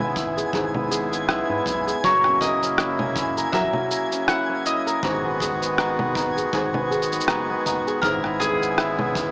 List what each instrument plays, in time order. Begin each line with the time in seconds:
Already playing: analog synth bass G#1, kora G#2 E4 G#4, accordion C#3 G#3 B3 E4, synth texture G#5 G#6
0.00 kora B3
0.16 kora E4, kick, cabasa
0.37 kora G#4, cabasa
0.53 analog synth bass G#1, kora G#2 G#4, kick, cabasa
0.75 kora B3, low conga
0.91 kora G#4, cabasa
1.12 kora B3, cabasa
1.28 analog synth bass B1, kora E4, cross-stick, cabasa
1.49 analog synth bass G#2, kora B3
1.66 analog synth bass B1, kora E4, kick, cabasa
1.87 kora G#4, cabasa
2.04 analog synth bass F#1, accordion F#3 A#3, kora F#3 A#4, mandolin C#5, kick, cabasa
2.24 kora C#4, cross-stick
2.41 kora A#4, mandolin D#5, kick, cabasa
2.63 kora C#4, cabasa
2.78 kora E4, cross-stick, cabasa
2.99 kora C#4, low conga
3.16 kora E4, kick, cabasa
3.37 kora A#4, cabasa
3.52 analog synth bass A#1, kora F#3 A#4, mandolin E5, kick, cabasa
3.73 kora C#4, low conga
3.91 kora A#4, cabasa
4.12 kora C#4, cabasa
4.28 kora E4, mandolin F#5, cross-stick, cabasa
4.49 kora C#4
4.66 kora E4, mandolin D#5, cabasa
4.87 kora A#4, cabasa
5.02 analog synth bass G#1, kora G#2 G#4, accordion D#3 G#3 B3 F#4, kick, cabasa
5.25 kora B3
5.40 kora G#4, kick, cabasa
5.62 kora B3, cabasa
5.78 kora D#4, cross-stick, cabasa
5.99 kora B3, low conga
6.15 kora D#4, kick, cabasa
6.37 kora G#4, cabasa
6.53 analog synth bass G#1, kora G#2 G#4, kick, cabasa
6.74 kora B3, low conga
6.91 kora G#4, cabasa
7.02 cabasa
7.12 kora B3, cabasa
7.20 cabasa
7.28 analog synth bass F#1, kora D#4, cross-stick, cabasa
7.50 kora B3
7.66 analog synth bass F#1, kora D#4, kick, cabasa
7.87 kora G#4, cabasa
8.02 analog synth bass G#1, kora G#2 G#4, accordion C#3 E4, mandolin A#4, kick, cabasa
8.24 kora B3, cross-stick
8.40 mandolin G#4, kora G#4, kick, cabasa
8.62 kora B3, cabasa
8.78 kora E4, cross-stick, cabasa
8.99 kora B3, low conga
9.15 kora E4, kick, cabasa